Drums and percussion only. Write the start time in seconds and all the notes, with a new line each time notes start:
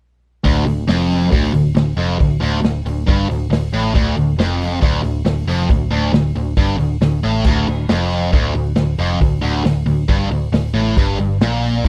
0.45 kick, open hi-hat
0.67 open hi-hat
0.88 snare, open hi-hat
1.10 open hi-hat
1.32 kick, open hi-hat
1.54 open hi-hat
1.76 snare, open hi-hat
1.99 open hi-hat
2.20 kick, open hi-hat
2.43 open hi-hat
2.64 snare, open hi-hat
2.86 open hi-hat
3.08 kick, open hi-hat
3.31 open hi-hat
3.52 snare, open hi-hat
3.74 open hi-hat
3.95 kick, open hi-hat
4.17 open hi-hat
4.39 snare, open hi-hat
4.61 open hi-hat
4.82 kick, open hi-hat
5.04 open hi-hat
5.25 snare, open hi-hat
5.49 open hi-hat
5.69 kick, open hi-hat
5.91 open hi-hat
6.13 snare, open hi-hat
6.35 open hi-hat
6.57 kick, open hi-hat
6.79 open hi-hat
7.01 snare, open hi-hat
7.23 open hi-hat
7.44 kick, crash
7.67 open hi-hat
7.89 snare, open hi-hat
8.10 open hi-hat
8.32 kick, open hi-hat
8.54 open hi-hat
8.75 snare, open hi-hat
8.98 open hi-hat
9.21 kick, open hi-hat
9.43 open hi-hat
9.65 snare, open hi-hat
9.87 open hi-hat
10.08 kick, open hi-hat
10.31 open hi-hat
10.53 snare, open hi-hat
10.76 open hi-hat
10.97 kick, open hi-hat
11.18 open hi-hat
11.41 snare, open hi-hat
11.63 open hi-hat
11.84 kick, open hi-hat